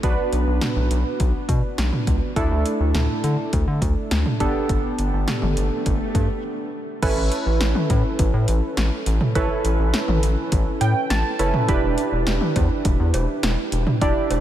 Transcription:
0.03 analog synth bass B1, synth keys B3 D4 F#4 B4, kick, closed hi-hat
0.32 analog synth bass B1, closed hi-hat
0.47 analog synth bass B1
0.61 snare, closed hi-hat, mid tom
0.76 analog synth bass B1
0.91 analog synth bass B1, closed hi-hat
1.20 analog synth bass B1, kick, closed hi-hat
1.49 analog synth bass B2, kick, closed hi-hat
1.78 analog synth bass B1, snare, closed hi-hat
1.93 mid tom
2.07 analog synth bass C#2, kick, closed hi-hat
2.36 analog synth bass D2, synth keys A3 D4 E4 A4, kick, closed hi-hat, swell
2.51 analog synth bass D2
2.66 closed hi-hat
2.80 analog synth bass D2
2.95 analog synth bass D2, snare, closed hi-hat, mid tom
3.24 analog synth bass D3, closed hi-hat
3.53 analog synth bass D2, kick, closed hi-hat
3.67 analog synth bass D3
3.82 analog synth bass D2, kick, closed hi-hat
4.11 analog synth bass D2, snare, closed hi-hat
4.26 mid tom
4.40 analog synth bass G1, synth keys B3 D4 G4 A4, kick, closed hi-hat
4.69 analog synth bass G1, kick, closed hi-hat
4.98 analog synth bass G1, closed hi-hat
5.13 analog synth bass G1
5.28 snare, closed hi-hat, mid tom
5.42 analog synth bass G1, mid tom
5.57 analog synth bass G1, closed hi-hat
5.86 analog synth bass G1, kick, closed hi-hat
6.15 analog synth bass G2, kick, closed hi-hat
7.02 analog synth bass A1, synth keys C#4 E4 A4 B4, kick, closed hi-hat, crash
7.17 analog synth bass A1
7.32 closed hi-hat
7.46 analog synth bass A1
7.61 analog synth bass A1, snare, closed hi-hat
7.75 mid tom
7.90 analog synth bass A2, kick, closed hi-hat
8.19 analog synth bass A1, kick, closed hi-hat
8.34 analog synth bass A2
8.48 analog synth bass A1, closed hi-hat
8.77 analog synth bass A1, snare, closed hi-hat
9.06 analog synth bass A1, closed hi-hat
9.21 mid tom
9.35 analog synth bass A1, synth keys C#4 E4 A4 B4, kick, closed hi-hat
9.65 analog synth bass A1, closed hi-hat
9.79 analog synth bass A1
9.94 snare, closed hi-hat
10.08 analog synth bass A1, mid tom
10.23 analog synth bass A1, closed hi-hat
10.52 analog synth bass A1, kick, closed hi-hat
10.81 analog synth bass A2, synth keys G5, closed hi-hat
11.10 analog synth bass A1, synth keys A5, snare, closed hi-hat
11.39 analog synth bass F#1, synth keys C#4 E4 A4 B4, closed hi-hat
11.54 mid tom
11.68 analog synth bass E1, synth keys D4 E4 G4 B4, kick, closed hi-hat
11.83 analog synth bass E1
11.98 closed hi-hat
12.12 analog synth bass E1
12.27 analog synth bass E1, snare, closed hi-hat
12.41 mid tom
12.56 analog synth bass E2, kick, closed hi-hat, cowbell
12.85 analog synth bass E1, kick, closed hi-hat
13.00 analog synth bass E2
13.14 analog synth bass E1, closed hi-hat, cowbell
13.43 analog synth bass E1, snare, closed hi-hat
13.72 analog synth bass E1, closed hi-hat
13.87 mid tom
14.02 analog synth bass E1, synth keys D4 E4 G4 D5, kick, closed hi-hat
14.31 analog synth bass E1, closed hi-hat, cowbell

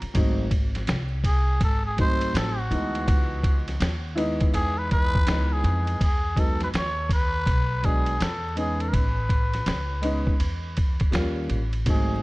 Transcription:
Already playing: grand piano A#5
0.02 muted upright bass stroke, ride
0.14 upright bass G#1, grand piano F#3 A3 C4 D#4, kick, ride
0.51 kick, ride
0.75 snare, ride
0.87 upright bass C2, snare, hi-hat pedal, ride
1.24 muted trumpet G#4, kick, ride
1.61 upright bass G#1, muted trumpet A4, kick, ride
1.86 muted trumpet G#4
1.97 grand piano F#3 A3 C4 D#4, kick, ride
2.01 muted trumpet C5
2.21 ride
2.34 upright bass A1, muted trumpet A4, snare, hi-hat pedal, ride
2.59 muted trumpet F#4
2.70 upright bass D2, grand piano E3 G#3 B3 D#4, ride
2.95 ride
3.08 upright bass C#2, kick, ride
3.44 kick, ride
3.68 snare, ride
3.80 upright bass D#2, snare, hi-hat pedal, ride
4.15 grand piano G#3 B3 D#4 E4, ride
4.40 kick, ride
4.54 upright bass E2, muted trumpet G#4, ride
4.78 muted trumpet B4
4.91 muted trumpet B4, kick, ride
5.15 kick
5.27 upright bass C#2, grand piano E3 G#3 B3 D#4, snare, hi-hat pedal, ride
5.53 muted trumpet G#4
5.64 upright bass F2, ride
5.87 ride
6.01 upright bass E2, muted trumpet G#4, kick, ride
6.35 grand piano F#3 G#3 B3 D#4, kick, ride
6.40 muted trumpet A4
6.61 muted trumpet B4, snare, ride
6.74 upright bass D#2, muted trumpet C#5, snare, hi-hat pedal, ride
7.09 muted trumpet B4, kick, ride
7.46 upright bass B1, kick, ride
7.82 grand piano F#3 G#3 B3 D4, muted trumpet G#4, kick, ride
8.06 ride
8.20 upright bass E2, muted trumpet A4, snare, hi-hat pedal, ride
8.55 grand piano G#3 B3 C#4 D#4, muted trumpet G#4, ride
8.80 muted trumpet A4, ride
8.89 muted trumpet A#4
8.93 upright bass A1, muted trumpet B4, kick, ride
9.29 kick, ride
9.53 snare, ride
9.66 upright bass C#2, snare, hi-hat pedal, ride
10.02 grand piano G#3 B3 C#4 D#4, ride
10.27 muted upright bass stroke, kick
10.40 upright bass E2, ride
10.77 kick, ride
11.00 kick, ride
11.11 upright bass D#2, grand piano G3 A#3 C#4 F4, snare, hi-hat pedal, ride
11.49 upright bass A1, ride
11.73 ride
11.86 upright bass G#1, grand piano F#3 A3 C4 D#4, kick, ride
11.90 muted trumpet G#4

